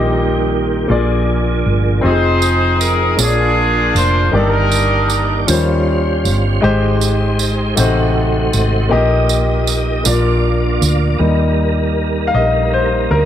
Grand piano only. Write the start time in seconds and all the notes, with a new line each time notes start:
Already playing: A#2 A#3 D#4 G4 D#5 C6
0.87 A#2 A#3 F4 G#4 D5
2.01 C4 F4 G4 D#5
2.10 G#4
3.16 A#2 A#3 F4 G#4 C#5
3.27 D5
4.31 G2 D#3 A#3 G4 D5
5.46 D#3 F3 C#4 F4 C5
5.52 G3
6.61 G#2 G#3 D#4 G4 C5
7.75 C3 A3 D#4 F#4 C5
8.89 A#2 A#3 D#4 G4 D#5
10.04 A#2 A#3 D4 F4 D5
11.19 G3 A#3 D#4
12.27 F5
12.34 D#5
12.73 C5
13.11 A#4